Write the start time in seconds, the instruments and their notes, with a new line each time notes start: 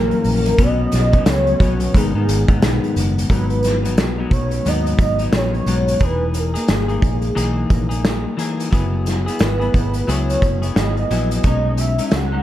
Already playing: fingered electric bass A#1, clean electric guitar F#2 E3 A#3 C#4, soft synth lead A#4
0.11 closed hi-hat
0.24 fingered electric bass A#1, open hi-hat, tambourine
0.46 closed hi-hat
0.58 fingered electric bass B1, clean electric guitar B2 F#3 B3 C#4, soft synth lead D#5, kick, closed hi-hat, tambourine
0.92 fingered electric bass B1, snare, closed hi-hat, tambourine
1.12 clean electric guitar F#3 B3 C#4, kick, closed hi-hat
1.26 fingered electric bass C#2, soft synth lead C#5, snare, closed hi-hat, tambourine
1.47 closed hi-hat
1.60 fingered electric bass B1, clean electric guitar B2 F#3 B3 C#4, kick, closed hi-hat, tambourine
1.80 closed hi-hat
1.94 fingered electric bass G#1, clean electric guitar G#2 D#3 B3 D#4, soft synth lead G#4, kick, closed hi-hat
2.14 fingered electric bass G#2, clean electric guitar G#2 D#3 B3 D#4
2.28 fingered electric bass G#1, closed hi-hat, tambourine
2.48 clean electric guitar G#2 D#3 B3 D#4, kick, closed hi-hat
2.62 fingered electric bass B1, snare, closed hi-hat, tambourine
2.84 closed hi-hat
2.96 fingered electric bass F#1, closed hi-hat, tambourine
3.18 closed hi-hat
3.29 fingered electric bass G#1, clean electric guitar G#2 F#3 B3 D#4, soft synth lead B4, kick, closed hi-hat, tambourine
3.50 closed hi-hat
3.63 snare, closed hi-hat, tambourine
3.84 clean electric guitar F#3 B3 D#4, closed hi-hat
3.97 fingered electric bass B1, snare, closed hi-hat, tambourine
4.18 clean electric guitar F#3 B3 D#4
4.31 fingered electric bass B1, soft synth lead C#5, kick, closed hi-hat, tambourine
4.51 closed hi-hat
4.65 fingered electric bass D#2, clean electric guitar G#2 F#3 B3 D#4, soft synth lead D#5, closed hi-hat, tambourine
4.86 closed hi-hat
4.98 fingered electric bass G#1, soft synth lead D#5, kick, closed hi-hat, tambourine
5.19 clean electric guitar F#3 B3 D#4, closed hi-hat
5.32 fingered electric bass A#1, soft synth lead C#5, snare, closed hi-hat, tambourine
5.54 closed hi-hat
5.66 fingered electric bass B1, clean electric guitar G#2 F#3 B3 D#4, closed hi-hat, tambourine
5.88 closed hi-hat
6.00 fingered electric bass E1, clean electric guitar E3 D#4 G#4, kick, closed hi-hat, tambourine
6.04 soft synth lead B4
6.34 closed hi-hat, tambourine
6.38 soft synth lead A#4
6.54 clean electric guitar A#3 D#4 G#4, closed hi-hat
6.68 fingered electric bass G#1, snare, closed hi-hat, tambourine
6.72 soft synth lead G#4
6.88 clean electric guitar A#3 D#4 G#4, closed hi-hat
7.02 fingered electric bass A#1, kick, closed hi-hat
7.22 closed hi-hat
7.35 fingered electric bass B1, clean electric guitar E3 A#3 D#4 G#4, closed hi-hat, tambourine
7.70 fingered electric bass A#1, kick, closed hi-hat, tambourine
7.89 clean electric guitar A#3 D#4 G#4, closed hi-hat
8.05 snare, closed hi-hat, tambourine
8.37 clean electric guitar E3 A#3 D#4 G#4, closed hi-hat, tambourine
8.60 closed hi-hat
8.71 fingered electric bass F#1, clean electric guitar F#3 B3 E4 G#4, kick, closed hi-hat, tambourine
9.06 soft synth lead G#4, snare, closed hi-hat, tambourine
9.26 clean electric guitar B3 E4 G#4, closed hi-hat
9.39 fingered electric bass G#1, soft synth lead B4, snare, closed hi-hat, tambourine
9.60 clean electric guitar B3 E4 G#4, closed hi-hat
9.74 fingered electric bass G#1, kick, closed hi-hat, tambourine
9.94 closed hi-hat
10.07 fingered electric bass C#2, clean electric guitar F#3 B3 E4 G#4, soft synth lead C#5, closed hi-hat, tambourine
10.30 closed hi-hat
10.42 fingered electric bass F#1, kick, closed hi-hat, tambourine
10.62 clean electric guitar B3 E4 G#4, closed hi-hat
10.76 fingered electric bass G#1, soft synth lead D#5, snare, closed hi-hat, tambourine
10.97 closed hi-hat
11.11 fingered electric bass A#1, clean electric guitar F#3 B3 E4 G#4, closed hi-hat, tambourine
11.31 closed hi-hat
11.44 fingered electric bass B1, clean electric guitar B2 G#3 C#4 D#4, soft synth lead D#5, kick, closed hi-hat, tambourine
11.77 soft synth lead E5, closed hi-hat, tambourine
11.98 clean electric guitar G#3 C#4 D#4, closed hi-hat
12.11 fingered electric bass C#2, soft synth lead F#5, snare, closed hi-hat, tambourine
12.32 clean electric guitar G#3 C#4 D#4